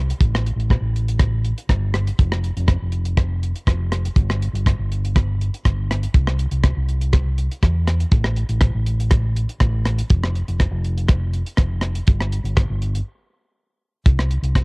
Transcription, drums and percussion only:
0.10 closed hi-hat
0.21 kick, closed hi-hat
0.35 cross-stick
0.46 closed hi-hat
0.60 closed hi-hat
0.70 kick, cross-stick, closed hi-hat
0.96 closed hi-hat
1.08 closed hi-hat
1.19 kick, cross-stick, closed hi-hat
1.45 closed hi-hat
1.58 closed hi-hat
1.69 kick, cross-stick, closed hi-hat
1.94 cross-stick, closed hi-hat
2.07 closed hi-hat
2.19 kick, closed hi-hat
2.32 cross-stick
2.44 closed hi-hat
2.57 closed hi-hat
2.68 kick, cross-stick, closed hi-hat
2.92 closed hi-hat
3.05 closed hi-hat
3.18 kick, cross-stick, closed hi-hat
3.43 closed hi-hat
3.56 closed hi-hat
3.67 kick, cross-stick, closed hi-hat
3.92 cross-stick, closed hi-hat
4.06 closed hi-hat
4.16 kick, closed hi-hat
4.30 cross-stick
4.43 closed hi-hat
4.56 closed hi-hat
4.66 kick, cross-stick, closed hi-hat
4.92 closed hi-hat
5.05 closed hi-hat
5.16 kick, cross-stick, closed hi-hat
5.41 closed hi-hat
5.54 closed hi-hat
5.65 kick, cross-stick, closed hi-hat
5.91 cross-stick, closed hi-hat
6.03 closed hi-hat
6.14 kick, closed hi-hat
6.27 cross-stick
6.39 closed hi-hat
6.51 closed hi-hat
6.64 kick, cross-stick, closed hi-hat
6.88 closed hi-hat
7.01 closed hi-hat
7.13 kick, cross-stick, closed hi-hat
7.38 closed hi-hat
7.51 closed hi-hat
7.63 kick, cross-stick, closed hi-hat
7.87 cross-stick, closed hi-hat
8.00 closed hi-hat
8.12 kick, closed hi-hat
8.24 cross-stick
8.36 closed hi-hat
8.49 closed hi-hat
8.61 kick, cross-stick, closed hi-hat
8.86 closed hi-hat
9.00 closed hi-hat
9.11 kick, cross-stick, closed hi-hat
9.37 closed hi-hat
9.49 closed hi-hat
9.60 kick, cross-stick, closed hi-hat
9.86 cross-stick, closed hi-hat
9.99 closed hi-hat
10.10 kick, closed hi-hat
10.24 cross-stick
10.35 closed hi-hat
10.48 closed hi-hat
10.60 kick, cross-stick, closed hi-hat
10.85 closed hi-hat
10.98 closed hi-hat
11.09 kick, cross-stick, closed hi-hat
11.34 closed hi-hat
11.47 closed hi-hat
11.57 kick, cross-stick, closed hi-hat
11.81 cross-stick, closed hi-hat
11.95 closed hi-hat
12.07 kick, closed hi-hat
12.20 cross-stick
12.32 closed hi-hat
12.45 closed hi-hat
12.57 kick, cross-stick, closed hi-hat
12.82 closed hi-hat
12.95 closed hi-hat
14.06 kick, closed hi-hat
14.19 cross-stick
14.31 closed hi-hat
14.44 closed hi-hat
14.55 kick, cross-stick, closed hi-hat

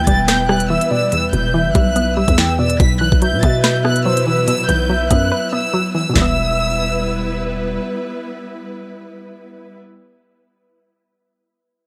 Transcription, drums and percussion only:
0.07 kick, closed hi-hat
0.28 snare, closed hi-hat
0.49 cross-stick
0.60 closed hi-hat
0.81 closed hi-hat
1.12 closed hi-hat
1.33 closed hi-hat
1.75 kick, closed hi-hat
1.96 closed hi-hat
2.28 kick, closed hi-hat
2.38 snare
2.70 closed hi-hat
2.80 kick, closed hi-hat
3.12 kick
3.22 closed hi-hat
3.43 kick, closed hi-hat
3.64 snare, closed hi-hat
3.85 cross-stick
3.96 closed hi-hat
4.17 closed hi-hat
4.48 closed hi-hat
4.69 closed hi-hat
5.11 kick, closed hi-hat
6.16 snare, floor tom

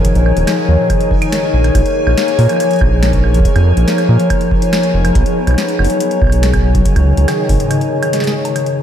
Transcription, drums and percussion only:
0.05 kick, closed hi-hat
0.15 closed hi-hat
0.26 high woodblock
0.37 closed hi-hat
0.47 snare, closed hi-hat, high woodblock
0.90 kick, closed hi-hat, high woodblock
1.01 closed hi-hat
1.11 kick
1.22 closed hi-hat, high woodblock
1.32 snare, closed hi-hat
1.64 closed hi-hat, high woodblock
1.75 kick, closed hi-hat, high woodblock
1.86 closed hi-hat
2.07 high woodblock
2.18 snare, closed hi-hat
2.28 closed hi-hat
2.39 open hi-hat
2.49 closed hi-hat, high woodblock
2.53 high woodblock
2.56 closed hi-hat, high woodblock
2.60 high woodblock
2.64 high woodblock
2.67 closed hi-hat, high woodblock
2.73 closed hi-hat
2.76 closed hi-hat
2.79 kick, closed hi-hat, high woodblock
3.03 snare, closed hi-hat
3.13 kick, closed hi-hat
3.24 high woodblock
3.34 closed hi-hat
3.40 kick
3.45 kick, closed hi-hat
3.56 closed hi-hat, high woodblock
3.77 closed hi-hat
3.88 snare, closed hi-hat
3.98 closed hi-hat, high woodblock
4.20 closed hi-hat
4.30 kick, closed hi-hat, high woodblock
4.41 closed hi-hat
4.51 kick
4.62 closed hi-hat
4.73 snare, closed hi-hat, high woodblock
4.83 closed hi-hat
5.05 closed hi-hat, high woodblock
5.15 kick, closed hi-hat
5.26 closed hi-hat
5.47 closed hi-hat, high woodblock
5.51 high woodblock
5.54 snare, closed hi-hat, high woodblock
5.61 high woodblock
5.65 closed hi-hat, high woodblock
5.79 high woodblock
5.85 open hi-hat
5.90 closed hi-hat
6.00 closed hi-hat
6.11 closed hi-hat
6.22 kick, high woodblock
6.24 high woodblock
6.27 high woodblock
6.30 closed hi-hat, high woodblock
6.43 snare, closed hi-hat
6.54 kick, closed hi-hat, high woodblock
6.75 kick, closed hi-hat
6.86 kick, closed hi-hat
6.96 closed hi-hat, high woodblock
7.17 closed hi-hat
7.28 snare, closed hi-hat, high woodblock
7.49 kick, closed hi-hat, open hi-hat
7.60 closed hi-hat
7.71 closed hi-hat, high woodblock
7.81 closed hi-hat
8.03 closed hi-hat, high woodblock
8.13 snare, closed hi-hat
8.20 snare, closed hi-hat
8.27 snare
8.45 closed hi-hat, high woodblock
8.56 closed hi-hat, high woodblock
8.66 closed hi-hat

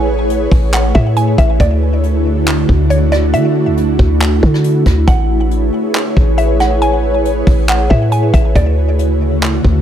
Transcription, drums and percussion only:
0.30 closed hi-hat
0.52 kick, open hi-hat
0.73 clap, closed hi-hat
0.95 kick
1.16 closed hi-hat
1.38 kick, closed hi-hat
1.60 kick, closed hi-hat
2.03 closed hi-hat
2.47 clap, closed hi-hat
2.69 kick
2.90 closed hi-hat
3.12 cross-stick, closed hi-hat
3.34 closed hi-hat
3.77 closed hi-hat
3.99 kick
4.21 clap
4.43 kick
4.54 cross-stick
4.64 closed hi-hat
4.86 kick, cross-stick, closed hi-hat
5.08 kick, closed hi-hat
5.51 closed hi-hat
5.94 clap, closed hi-hat
6.17 kick
6.38 closed hi-hat
6.60 cross-stick, closed hi-hat
6.82 closed hi-hat
7.25 closed hi-hat
7.47 kick, open hi-hat
7.68 clap, closed hi-hat
7.91 kick
8.12 closed hi-hat
8.34 kick, closed hi-hat
8.55 kick, closed hi-hat
8.99 closed hi-hat
9.42 clap, closed hi-hat
9.65 kick

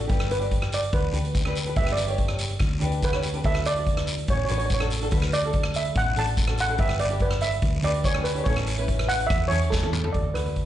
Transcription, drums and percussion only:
0.09 kick, closed hi-hat, long guiro
0.20 cross-stick
0.31 closed hi-hat
0.42 closed hi-hat
0.51 kick, closed hi-hat
0.62 cross-stick
0.72 closed hi-hat, short guiro
0.83 closed hi-hat
0.93 kick, closed hi-hat, long guiro
1.14 closed hi-hat
1.25 closed hi-hat
1.35 kick, closed hi-hat, short guiro
1.45 cross-stick
1.55 closed hi-hat, short guiro
1.66 closed hi-hat
1.76 kick, closed hi-hat, long guiro
1.87 cross-stick
1.97 closed hi-hat, short guiro
2.08 closed hi-hat
2.18 kick, closed hi-hat
2.28 cross-stick
2.39 closed hi-hat, short guiro
2.49 closed hi-hat
2.60 kick, cross-stick, closed hi-hat, long guiro
2.81 closed hi-hat
2.92 closed hi-hat
3.02 kick, closed hi-hat, short guiro
3.13 cross-stick
3.23 closed hi-hat, short guiro
3.34 closed hi-hat
3.44 kick, closed hi-hat, long guiro
3.55 cross-stick
3.65 closed hi-hat, short guiro
3.76 closed hi-hat
3.86 kick, closed hi-hat
3.97 cross-stick
4.07 closed hi-hat, short guiro
4.18 closed hi-hat
4.28 kick, closed hi-hat, long guiro
4.49 closed hi-hat
4.60 closed hi-hat
4.70 kick, closed hi-hat, short guiro
4.80 cross-stick
4.90 closed hi-hat, short guiro
5.01 closed hi-hat
5.11 kick, closed hi-hat, long guiro
5.22 cross-stick
5.32 closed hi-hat, short guiro
5.43 closed hi-hat
5.53 kick, closed hi-hat
5.63 cross-stick
5.74 closed hi-hat, short guiro
5.85 closed hi-hat
5.95 kick, closed hi-hat, long guiro
6.16 closed hi-hat
6.27 closed hi-hat
6.37 kick, closed hi-hat, short guiro
6.47 cross-stick
6.58 closed hi-hat, short guiro
6.68 closed hi-hat
6.78 kick, closed hi-hat, long guiro
6.89 cross-stick
6.99 closed hi-hat
7.10 closed hi-hat
7.20 kick, closed hi-hat
7.31 cross-stick
7.41 closed hi-hat, short guiro
7.52 closed hi-hat
7.62 kick, closed hi-hat, long guiro
7.83 closed hi-hat
7.94 closed hi-hat
8.04 kick, closed hi-hat, short guiro
8.14 cross-stick
8.25 closed hi-hat, short guiro
8.36 closed hi-hat
8.45 kick, closed hi-hat, long guiro
8.57 cross-stick
8.67 closed hi-hat
8.78 closed hi-hat
8.88 kick, closed hi-hat
8.99 cross-stick
9.09 closed hi-hat, short guiro
9.20 closed hi-hat
9.30 kick, cross-stick, closed hi-hat, long guiro
9.51 closed hi-hat
9.62 closed hi-hat
9.72 kick, snare, short guiro
9.83 high tom
9.93 mid tom, short guiro
10.04 floor tom
10.14 kick, closed hi-hat
10.35 cross-stick, closed hi-hat
10.46 closed hi-hat
10.56 kick, closed hi-hat

